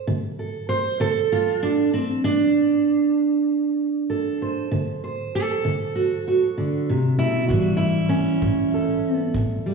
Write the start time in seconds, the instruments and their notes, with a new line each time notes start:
Already playing: steel-string acoustic guitar A4 C5
0.07 steel-string acoustic guitar D3
0.39 steel-string acoustic guitar A4
0.69 steel-string acoustic guitar C5
1.00 steel-string acoustic guitar D3 A4
1.32 steel-string acoustic guitar F4
1.63 steel-string acoustic guitar D4
1.94 steel-string acoustic guitar C4
2.24 steel-string acoustic guitar D4
4.10 steel-string acoustic guitar A4
4.42 steel-string acoustic guitar C5
4.72 steel-string acoustic guitar D3
5.04 steel-string acoustic guitar C5
5.35 steel-string acoustic guitar A4
5.65 steel-string acoustic guitar D3
5.95 steel-string acoustic guitar F#4
6.28 steel-string acoustic guitar F#4
6.58 steel-string acoustic guitar D3
6.89 steel-string acoustic guitar C3
7.19 steel-string acoustic guitar B2 E4
7.48 steel-string acoustic guitar A2 E3 F#4, kick
7.53 steel-string acoustic guitar G3
7.77 steel-string acoustic guitar E4
8.09 steel-string acoustic guitar C#4
8.42 steel-string acoustic guitar A2, kick
8.74 steel-string acoustic guitar A4
9.34 steel-string acoustic guitar A2, kick
9.66 steel-string acoustic guitar G3